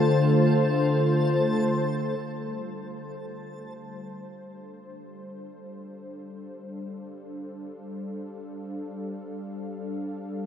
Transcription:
Already playing: analog synth pad D3 A3 F4 C5 G5, synth texture A4 A5, pedal steel guitar F5
2.21 analog synth pad G3
2.42 analog synth pad D4
2.95 analog synth pad A4
3.71 analog synth pad F5

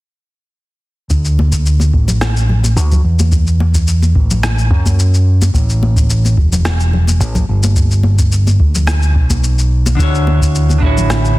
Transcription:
1.10 fingered electric bass D2, kick, cabasa
1.25 cabasa
1.39 high conga
1.52 kick, cabasa
1.66 cabasa
1.80 high conga, cabasa
1.93 fingered electric bass A1, kick
2.08 low conga, cabasa
2.21 cross-stick, high conga, cabasa
2.36 cabasa
2.49 low conga
2.64 high conga, cabasa
2.76 fingered electric bass D2, cabasa
2.91 kick, low conga, cabasa
3.04 fingered electric bass E2
3.19 high conga, cabasa
3.32 kick, cabasa
3.47 cabasa
3.60 high conga
3.74 kick, cabasa
3.87 cabasa
4.02 high conga, cabasa
4.15 fingered electric bass A1, kick
4.30 low conga, cabasa
4.43 cross-stick, high conga, cabasa
4.58 cabasa
4.71 fingered electric bass F#2, kick
4.86 kick, high conga, cabasa
4.99 cabasa
5.14 cabasa
5.42 high conga, cabasa
5.54 fingered electric bass A1, kick, cabasa
5.69 cabasa
5.83 high conga
5.96 kick, cabasa
6.10 cabasa
6.25 high conga, cabasa
6.37 fingered electric bass E1, kick
6.52 low conga, cabasa
6.65 cross-stick, high conga, cabasa
6.80 cabasa
6.93 low conga
7.07 high conga, cabasa
7.20 fingered electric bass A1, cabasa
7.35 kick, low conga, cabasa
7.49 fingered electric bass G1
7.63 high conga, cabasa
7.76 kick, cabasa
7.91 cabasa
8.03 high conga
8.19 kick, cabasa
8.32 cabasa
8.47 high conga, cabasa
8.60 fingered electric bass D2, kick
8.75 low conga, cabasa
8.87 cross-stick, high conga, cabasa
9.02 cabasa
9.15 fingered electric bass B1, kick
9.30 kick, high conga, cabasa
9.44 cabasa
9.58 cabasa
9.86 high conga, cabasa
9.95 fingered electric bass D2, clean electric guitar D3 D4 E4, kick
10.00 clean electric guitar F#4 C#5, cabasa
10.15 cabasa
10.27 high conga
10.41 kick, cabasa
10.55 cabasa
10.69 high conga, cabasa
10.78 fingered electric bass A1, clean electric guitar D3 D4 E4, kick
10.84 clean electric guitar F#4 C#5
10.97 low conga, cabasa
11.10 cross-stick, high conga, cabasa
11.25 cabasa

